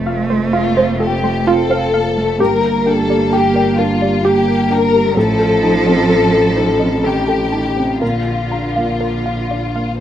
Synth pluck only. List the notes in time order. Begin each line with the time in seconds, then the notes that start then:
0.07 F5
0.30 C5
0.53 F4
0.77 C5
1.00 A4
1.24 C5
1.47 F4
1.71 F5
1.94 F5
2.40 G4
2.87 G5
3.10 D5
3.33 G4
3.56 D5
3.79 A#4
4.02 D5
4.25 G4
4.48 G5
4.72 G5
5.17 A4
5.63 A5
5.86 D#5
6.10 A4
6.33 D#5
6.56 C5
6.80 D#5
7.04 A4
7.28 A5
7.52 A5
8.02 A#4
8.52 A#5
8.76 F5
9.01 A#4
9.26 F5
9.51 D5
9.76 F5